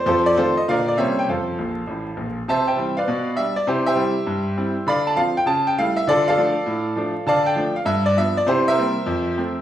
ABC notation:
X:1
M:4/4
L:1/8
Q:"Swing" 1/4=200
K:F
V:1 name="Grand piano"
[FAc] d [FAc] _e [Bdf] d [c_d=e] g | [Acf]6- [Acf] z | [K:C] [cea] [ceg]2 [Bdf]3 e d | [EGc] [Gce]6- [Gce] |
[dfb] a f g a g f e | [FAd] [Adf]6- [Adf] | [K:F] [dfa] g2 f e d e d | [EGc] [Bce]6- [Bce] |]
V:2 name="Grand piano" clef=bass
F,,2 [_E,A,C]2 [B,,D,B,D]2 [C,G,B,_D]2 | F,,2 [B,,,B,,]2 [A,,,A,,]2 [B,,,B,,]2 | [K:C] C,2 [E,G,C]2 B,,2 [G,D]2 | C,2 [G,CE]2 G,,2 [G,CE]2 |
D,2 [F,CF]2 ^C,2 [G,A,E]2 | D,2 [F,A,D]2 A,,2 [F,A,D]2 | [K:F] D,2 [F,A,D]2 G,,2 [F,=B,D]2 | C,2 [G,B,C]2 F,,2 [F,A,C]2 |]